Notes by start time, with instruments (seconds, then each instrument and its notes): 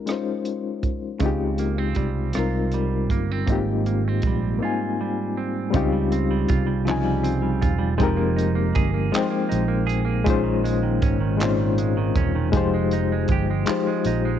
Already playing: reed electric piano G#3 C#4 D#4 F4 G4 A#4
0.06 reed electric piano G#3 C#4 D#4 F4, cross-stick, closed hi-hat
0.12 reed electric piano C5
0.45 closed hi-hat
0.83 kick, closed hi-hat
1.20 fingered electric bass C#2, clean electric guitar C#3, reed electric piano G#3 C4 D#4, kick, closed hi-hat
1.24 reed electric piano F4 G4
1.58 clean electric guitar A#3, closed hi-hat
1.78 clean electric guitar C4
1.95 fingered electric bass C2, clean electric guitar G3, kick, closed hi-hat
2.33 reed electric piano G3 C4 D#4, clean electric guitar F4, cross-stick, closed hi-hat
2.37 fingered electric bass C2, reed electric piano F4 A#4
2.72 clean electric guitar G3, closed hi-hat
3.10 fingered electric bass G1, clean electric guitar A#3, kick, closed hi-hat
3.31 clean electric guitar C4
3.47 fingered electric bass G#1, clean electric guitar G#2, reed electric piano A#3 C4 D#4 F4, kick, closed hi-hat
3.52 reed electric piano G4
3.86 clean electric guitar A#3, closed hi-hat
4.08 clean electric guitar C4
4.22 fingered electric bass A#1, kick, closed hi-hat
4.27 clean electric guitar G3
4.59 reed electric piano A#3 C4 D#4, clean electric guitar F4
4.63 reed electric piano F4 G#5
5.01 clean electric guitar G3
5.37 clean electric guitar C4
5.70 clean electric guitar C#3, reed electric piano G3 C4 D#4, kick, closed hi-hat
5.75 fingered electric bass C#2, reed electric piano F4 G4
5.92 clean electric guitar G3
6.12 clean electric guitar C4, closed hi-hat
6.31 clean electric guitar G3
6.48 fingered electric bass C2, clean electric guitar F4, kick, closed hi-hat
6.66 clean electric guitar G3
6.85 clean electric guitar C#3, reed electric piano F3 C4 D#4, clap, closed hi-hat
6.89 reed electric piano F4 G#5
7.04 clean electric guitar G3
7.23 clean electric guitar C4, closed hi-hat
7.42 clean electric guitar G3
7.61 fingered electric bass E1, clean electric guitar F4, kick, closed hi-hat
7.79 clean electric guitar G3
7.98 fingered electric bass F1, clean electric guitar F3, reed electric piano G#3 C4 D#4, kick, closed hi-hat
8.02 reed electric piano G4 A#4
8.17 clean electric guitar A#3
8.36 clean electric guitar D#4, closed hi-hat
8.55 clean electric guitar A#3
8.75 fingered electric bass G1, clean electric guitar G#4, kick, closed hi-hat
8.94 clean electric guitar A#3
9.12 clean electric guitar F3, reed electric piano G#3 C4 D#4, muted fingered electric bass stroke, clap, closed hi-hat
9.16 reed electric piano C5 G5
9.31 clean electric guitar A#3
9.49 fingered electric bass A#1, clean electric guitar D#4, closed hi-hat
9.68 clean electric guitar A#3
9.87 clean electric guitar G#4, closed hi-hat
10.05 clean electric guitar A#3
10.25 fingered electric bass A#1, clean electric guitar A#2, reed electric piano G#3 C#4 D#4 F4, kick, closed hi-hat
10.30 reed electric piano C5
10.44 clean electric guitar D#3
10.64 clean electric guitar G#3, closed hi-hat
10.83 clean electric guitar D#3
11.02 fingered electric bass G#1, clean electric guitar C#4, kick, closed hi-hat
11.20 clean electric guitar D#3
11.37 clean electric guitar A#2, reed electric piano G#3 C4 D#4 F4, closed hi-hat
11.42 reed electric piano C#4 C5, clap
11.59 clean electric guitar D#3
11.78 clean electric guitar G#3, closed hi-hat
11.97 clean electric guitar D#3
12.15 fingered electric bass E1, clean electric guitar C#4, kick, closed hi-hat
12.35 clean electric guitar D#3
12.52 fingered electric bass F1, clean electric guitar F3, reed electric piano G#3 D#4 F4, kick, closed hi-hat
12.56 reed electric piano G4 C5
12.74 clean electric guitar G#3
12.91 clean electric guitar D#4, closed hi-hat
13.12 clean electric guitar G#3
13.28 fingered electric bass G1, clean electric guitar G4, kick, closed hi-hat
13.50 clean electric guitar G#3
13.66 clean electric guitar F3, reed electric piano G#3 D#4 F4, muted fingered electric bass stroke, clap, closed hi-hat
13.70 reed electric piano G4 C5
13.87 clean electric guitar G#3
14.05 fingered electric bass A#1, clean electric guitar D#4, closed hi-hat
14.25 clean electric guitar G#3